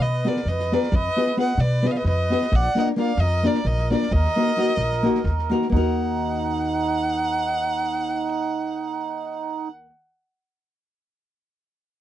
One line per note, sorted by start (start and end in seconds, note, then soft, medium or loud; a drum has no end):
0.00 0.27 B2 loud
0.00 0.25 B4 medium
0.00 0.29 D#5 loud
0.25 0.39 B3 medium
0.25 0.39 F4 medium
0.25 0.40 G#4 medium
0.25 0.47 A#4 medium
0.25 0.40 B4 medium
0.25 0.50 D5 medium
0.25 snare soft
0.37 snare soft
0.45 0.74 F2 medium
0.45 0.75 D#5 loud
0.45 snare soft
0.50 0.74 B4 medium
0.59 snare soft
0.72 0.86 B3 medium
0.72 0.86 F4 medium
0.72 0.87 G#4 medium
0.72 0.94 A#4 medium
0.72 0.87 B4 medium
0.72 0.97 D5 loud
0.72 snare soft
0.83 snare soft
0.92 1.07 F2 loud
0.92 1.38 B4 medium
0.92 1.39 D#5 loud
0.92 kick loud
1.16 1.31 B3 medium
1.16 1.31 F4 medium
1.16 1.31 G#4 medium
1.16 1.31 B4 medium
1.16 snare soft
1.27 snare soft
1.37 1.51 B3 medium
1.37 1.52 F4 medium
1.37 1.52 G#4 medium
1.37 1.52 B4 medium
1.37 1.59 D#5 medium
1.37 1.62 F#5 medium
1.37 snare soft
1.58 1.86 B2 loud
1.58 1.88 D5 loud
1.58 snare soft
1.62 1.86 B4 medium
1.82 1.98 B3 medium
1.82 1.98 F4 medium
1.82 1.99 G#4 medium
1.82 1.99 B4 medium
1.82 snare soft
1.87 1.91 B4 medium
1.87 1.95 D5 medium
1.87 1.93 D#5 medium
1.91 1.98 F5 medium
1.91 snare soft
1.97 2.06 B4 medium
1.97 2.07 D#5 loud
2.04 2.33 F2 medium
2.04 2.50 B4 medium
2.04 2.57 D#5 loud
2.04 snare soft
2.30 2.45 B3 medium
2.30 2.46 F4 medium
2.30 2.46 G#4 medium
2.30 2.46 B4 medium
2.30 snare soft
2.42 snare soft
2.52 2.66 A#1 loud
2.52 2.78 D5 loud
2.52 2.78 F#5 loud
2.52 kick loud
2.75 2.90 A#3 medium
2.75 2.90 D4 medium
2.75 2.90 F4 medium
2.75 2.91 A#4 medium
2.75 2.88 D#5 medium
2.75 snare soft
2.79 2.88 F#5 medium
2.86 snare soft
2.96 3.11 A#3 medium
2.96 3.11 D4 medium
2.96 3.11 F4 medium
2.96 3.12 A#4 medium
2.96 3.18 D5 medium
2.96 3.22 F5 medium
2.96 snare soft
3.17 3.46 F2 loud
3.17 3.48 D#5 loud
3.17 snare soft
3.22 3.44 A#4 medium
3.43 3.58 A#3 medium
3.43 3.58 D4 medium
3.43 3.59 F4 medium
3.43 3.59 A#4 medium
3.43 3.65 A#4 medium
3.43 3.69 D5 medium
3.43 snare soft
3.54 snare soft
3.65 3.93 A#1 medium
3.65 3.91 A#4 medium
3.65 3.92 D#5 loud
3.65 snare soft
3.78 snare soft
3.90 4.05 A#3 medium
3.90 4.05 D4 medium
3.90 4.06 F4 medium
3.90 4.06 A#4 medium
3.90 4.12 A#4 medium
3.90 4.14 D5 medium
3.90 snare soft
4.02 snare soft
4.11 4.26 D#2 loud
4.11 5.52 A#4 loud
4.11 5.51 D#5 loud
4.11 kick loud
4.25 snare soft
4.36 4.50 A#3 medium
4.36 4.50 D#4 medium
4.36 4.51 F#4 medium
4.36 4.51 A#4 medium
4.36 snare soft
4.47 snare soft
4.56 4.71 A#3 medium
4.56 4.71 D#4 medium
4.56 4.71 F#4 medium
4.56 4.72 A#4 medium
4.56 snare soft
4.68 snare soft
4.77 5.06 A#1 loud
4.77 snare soft
4.92 snare soft
5.03 5.18 A#3 medium
5.03 5.18 D#4 medium
5.03 5.18 F#4 medium
5.03 5.18 A#4 loud
5.03 snare soft
5.15 snare soft
5.24 5.53 D#2 medium
5.24 kick medium
5.24 snare soft
5.38 snare soft
5.50 5.65 A#3 medium
5.50 5.65 D#4 medium
5.50 5.65 F#4 medium
5.50 5.66 A#4 medium
5.50 snare soft
5.62 snare soft
5.70 9.89 D#2 medium
5.70 9.86 A#3 medium
5.70 9.88 D#4 medium
5.70 9.68 D#4 medium
5.70 9.68 F#5 loud
5.70 kick medium
5.74 9.90 F#4 medium
5.74 9.93 A#4 medium